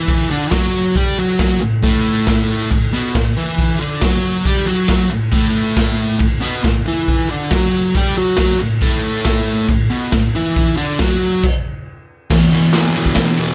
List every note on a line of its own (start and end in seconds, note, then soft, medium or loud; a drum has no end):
0.00 0.30 E3 medium
0.00 0.30 E4 loud
0.08 kick loud
0.08 crash medium
0.30 0.51 D3 medium
0.30 0.52 D4 loud
0.51 0.95 F#3 medium
0.51 0.95 F#4 loud
0.51 kick loud
0.51 snare loud
0.51 crash medium
0.95 1.17 G3 medium
0.95 1.18 G4 loud
0.95 kick loud
0.95 crash medium
1.18 1.60 F#3 medium
1.18 1.62 F#4 medium
1.39 kick loud
1.39 snare loud
1.39 crash medium
1.61 1.79 A2 medium
1.82 2.70 A2 medium
1.82 2.70 A3 loud
1.82 kick loud
1.82 crash medium
2.27 kick loud
2.27 snare loud
2.27 crash medium
2.71 2.89 A2 medium
2.71 kick loud
2.71 crash medium
2.93 3.14 B2 medium
2.93 3.14 B3 medium
3.15 3.33 A2 medium
3.15 kick loud
3.15 snare loud
3.15 crash medium
3.37 3.79 E3 loud
3.37 3.80 E4 loud
3.58 kick loud
3.58 crash medium
3.80 4.01 D3 loud
3.80 4.02 D4 loud
4.01 4.45 F#3 medium
4.01 4.45 F#4 loud
4.01 kick loud
4.01 snare loud
4.01 crash medium
4.45 4.67 G3 medium
4.45 4.67 G4 medium
4.45 kick loud
4.45 crash medium
4.66 5.10 F#3 medium
4.66 5.10 F#4 loud
4.88 kick loud
4.88 snare loud
4.88 crash medium
5.11 5.28 A2 medium
5.31 6.19 A2 medium
5.31 6.19 A3 medium
5.31 kick loud
5.31 crash medium
5.77 kick loud
5.77 snare loud
5.77 crash medium
6.19 6.37 A2 medium
6.19 kick loud
6.19 crash medium
6.41 6.62 B2 medium
6.41 6.63 B3 loud
6.64 6.81 A2 medium
6.64 kick loud
6.64 snare loud
6.64 crash medium
6.86 7.29 E3 loud
6.86 7.30 E4 loud
7.08 kick loud
7.08 crash medium
7.30 7.51 D3 medium
7.30 7.51 D4 loud
7.51 7.95 F#3 medium
7.51 7.96 F#4 loud
7.51 kick loud
7.51 snare loud
7.51 crash medium
7.94 8.16 G3 medium
7.94 8.17 G4 loud
7.94 kick loud
7.94 crash medium
8.17 8.59 F#3 medium
8.17 8.60 F#4 loud
8.37 kick loud
8.37 snare loud
8.37 crash medium
8.60 8.78 A2 medium
8.81 9.68 A2 medium
8.81 9.69 A3 loud
8.81 kick loud
8.81 crash medium
9.25 kick loud
9.25 snare loud
9.25 crash medium
9.68 9.87 A2 medium
9.68 kick loud
9.68 crash medium
9.90 10.12 B2 medium
9.90 10.12 B3 medium
10.12 10.30 A2 medium
10.12 kick loud
10.12 snare loud
10.12 crash medium
10.35 10.76 E3 loud
10.35 10.77 E4 loud
10.56 kick loud
10.56 crash medium
10.76 10.98 D3 loud
10.76 10.99 D4 loud
10.99 11.43 F#3 medium
10.99 11.43 F#4 loud
10.99 kick loud
10.99 snare loud
10.99 crash medium
11.43 kick loud
11.43 crash loud
12.30 12.51 E2 medium
12.30 12.52 B2 loud
12.30 12.54 E3 loud
12.30 kick loud
12.30 snare loud
12.30 crash loud
12.52 12.72 E2 medium
12.52 12.74 B2 medium
12.52 12.75 E3 loud
12.52 ride medium
12.73 12.94 E2 medium
12.73 12.96 B2 medium
12.73 12.97 E3 loud
12.73 snare loud
12.73 ride loud
12.96 13.16 E2 medium
12.96 13.18 B2 medium
12.96 13.19 E3 medium
12.96 ride medium
13.06 kick medium
13.15 13.38 E2 medium
13.15 13.39 B2 loud
13.15 kick loud
13.15 snare loud
13.15 ride loud
13.19 13.40 E3 loud
13.37 13.54 E2 medium
13.37 13.54 B2 medium
13.37 13.54 E3 loud
13.37 ride medium